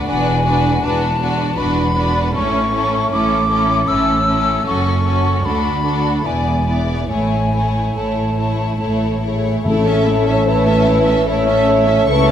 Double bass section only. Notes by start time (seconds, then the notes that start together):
0.08 E1
0.84 E1
1.58 E1
2.35 A1
3.12 A1
3.90 A1
4.67 F#1
5.46 D2
6.26 E1
7.10 A1
7.95 A1
8.79 A1
9.65 A1
12.08 C#2